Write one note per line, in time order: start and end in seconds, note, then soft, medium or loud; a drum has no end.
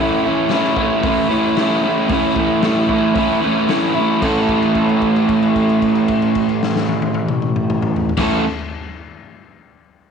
0.00 0.50 A2 loud
0.00 0.51 E3 medium
0.00 0.28 A3 loud
0.00 0.26 C#4 loud
0.00 0.23 E4 loud
0.23 0.53 C#4 medium
0.23 0.54 E4 medium
0.29 0.52 A3 medium
0.49 1.34 A2 medium
0.49 1.02 E3 medium
0.49 snare medium
0.49 open hi-hat medium
0.53 0.82 A3 loud
0.53 0.80 C#4 medium
0.53 0.77 E4 loud
0.64 snare soft
0.76 1.06 C#4 medium
0.76 1.07 E4 medium
0.76 kick medium
0.82 1.04 A3 medium
1.03 1.33 E3 medium
1.03 1.31 A3 medium
1.03 1.30 C#4 medium
1.03 kick loud
1.03 open hi-hat medium
1.08 1.29 E4 medium
1.29 1.55 E3 medium
1.29 1.57 A3 medium
1.29 1.59 C#4 medium
1.29 1.60 E4 medium
1.35 2.07 A2 medium
1.56 2.09 E3 medium
1.56 1.88 A3 medium
1.56 snare loud
1.56 open hi-hat medium
1.60 1.85 C#4 medium
1.60 1.82 E4 medium
1.83 2.11 C#4 medium
1.83 2.12 E4 medium
1.88 2.10 A3 soft
2.08 2.61 A2 loud
2.08 2.63 E3 medium
2.08 2.38 A3 loud
2.08 kick loud
2.08 open hi-hat medium
2.12 2.37 C#4 loud
2.12 2.34 E4 loud
2.36 2.64 A3 medium
2.36 2.65 C#4 medium
2.36 2.66 E4 medium
2.36 kick medium
2.62 3.16 A2 loud
2.62 3.13 E3 medium
2.62 2.92 A3 medium
2.62 2.89 C#4 loud
2.62 snare loud
2.62 open hi-hat medium
2.67 2.87 E4 medium
2.89 3.17 C#4 medium
2.89 3.18 E4 medium
2.89 kick medium
2.93 3.15 A3 medium
3.15 3.45 E3 medium
3.15 3.43 A3 medium
3.15 3.43 C#4 medium
3.15 kick loud
3.15 open hi-hat medium
3.19 3.40 E4 medium
3.41 3.69 A3 medium
3.41 3.70 C#4 medium
3.41 3.72 E4 medium
3.46 3.98 A2 medium
3.46 3.67 E3 medium
3.68 4.20 E3 medium
3.68 3.98 A3 medium
3.68 3.96 C#4 medium
3.68 snare medium
3.68 open hi-hat medium
3.73 3.94 E4 medium
3.95 4.22 C#4 medium
3.95 4.20 E4 medium
3.99 4.22 A3 medium
4.21 8.11 A2 loud
4.21 8.11 E3 loud
4.21 8.11 A3 loud
4.21 8.12 C#4 loud
4.21 8.13 A4 loud
4.21 kick loud
4.21 crash medium
4.49 kick medium
4.49 crash soft
4.62 crash medium
4.75 kick medium
4.75 crash soft
4.89 crash soft
5.02 kick medium
5.02 crash soft
5.16 crash medium
5.29 kick medium
5.29 crash medium
5.43 crash medium
5.56 kick medium
5.56 crash soft
5.69 crash medium
5.82 kick medium
5.82 crash medium
5.95 crash soft
6.08 kick medium
6.08 crash medium
6.22 crash soft
6.35 kick medium
6.35 crash medium
6.49 crash soft
6.63 snare loud
6.76 snare medium
6.89 high tom medium
7.02 high tom medium
7.14 high tom medium
7.28 mid tom loud
7.42 mid tom loud
7.56 mid tom medium
7.70 mid tom medium
7.82 mid tom loud
7.96 floor tom medium
8.09 floor tom loud
8.17 8.42 A2 medium
8.17 8.42 E3 loud
8.17 8.43 A3 loud
8.17 8.43 C#4 loud
8.17 8.43 A4 medium
8.17 kick loud
8.17 snare loud
8.17 crash loud